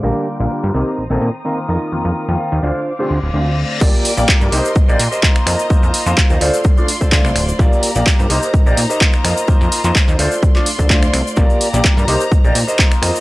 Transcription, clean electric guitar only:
X:1
M:4/4
L:1/16
Q:"Swing 16ths" 1/4=127
K:Cdor
V:1 name="Clean electric guitar"
[DGB]2 z4 [CEB]2 z [CEB] z2 [CEB] z [EFB]2- | [EFB]3 z3 [DFc]2 z [DFc] z2 [DFc] z3 | [FGBd]2 z3 [FGBd] [GBce]4 z [GBce]2 z [FBce]2- | [FBce]4 z [FBce] [FAcd]4 z [FAcd]2 z3 |
[FGBd]2 z3 [FGBc] [GBce]4 z [GBce]2 z [FBce]2- | [FBce]4 z [FBce] [FAcd]4 z [FAcd]2 z3 | [FGBd]2 z3 [FGBd] [GBce]4 z [GBce]2 z [FBce]2 |]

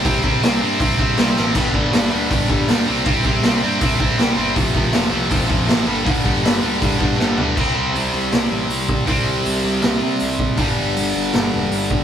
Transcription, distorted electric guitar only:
X:1
M:4/4
L:1/8
Q:1/4=159
K:C
V:1 name="Distorted electric guitar" clef=bass
[C,G,C] [C,G,C] [C,G,C] [C,G,C] [C,G,C] [C,G,C] [C,G,C] [C,G,C] | [G,,D,G,] [G,,D,G,] [G,,D,G,] [G,,D,G,] [G,,D,G,] [G,,D,G,] [G,,D,G,] [C,G,C] | [C,G,C] [C,G,C] [C,G,C] [C,G,C] [C,G,C] [C,G,C] [C,G,C] [C,G,C] | [F,,C,F,] [F,,C,F,] [F,,C,F,] [F,,C,F,] [F,,C,F,] [F,,C,F,] [F,,C,F,] [G,,D,G,] |
[G,,D,G,] [G,,D,G,] [G,,D,G,] [G,,D,G,] [G,,D,G,] [G,,D,G,] [G,,D,G,] [G,,D,G,] | [K:Clyd] [C,G,C]8 | [C,G,C]8 | [G,,D,G,]8 |]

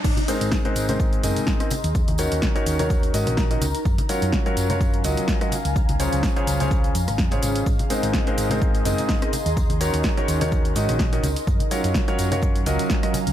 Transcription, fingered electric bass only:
X:1
M:4/4
L:1/16
Q:"Swing 16ths" 1/4=126
K:Abmix
V:1 name="Fingered electric bass" clef=bass
A,,, z2 A,,, z2 A,,,4 G,,, z4 E,,- | E,, E,,2 E,, z2 E,,4 A,, B,,,3 D,, z | G,, z2 G,, z2 G,,4 D,, z4 D,,- | D,, D,,2 D,, z2 D,,4 F,, A,,, F,, A,,, A,,,2 |
z3 A,,, z2 A,,,4 G,,, z4 E,,- | E,, E,,2 E,, z2 E,,4 A,, B,,,3 D,, z | G,, z2 G,, z2 G,,4 D,, z4 D,, |]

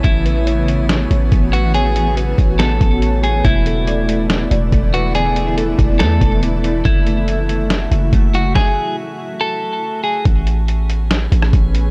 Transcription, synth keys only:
X:1
M:4/4
L:1/8
Q:1/4=141
K:A
V:1 name="Synth keys"
[B,c] B c B,2 c B, B | c B, B c B,2 c B, | A, A d A,2 d A, B | d A, A d A,2 d A, |
A, A e A,2 e A, F- | F4- F z3 | z8 |]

